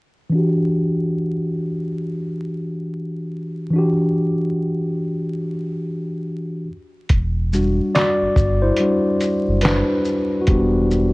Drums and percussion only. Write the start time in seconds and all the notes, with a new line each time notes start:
7.09 kick, closed hi-hat
7.53 shaker
7.95 snare, clap, closed hi-hat
8.36 kick, shaker
8.77 closed hi-hat
9.21 closed hi-hat, shaker
9.61 snare, closed hi-hat
9.66 clap
10.05 shaker
10.47 kick, closed hi-hat
10.91 shaker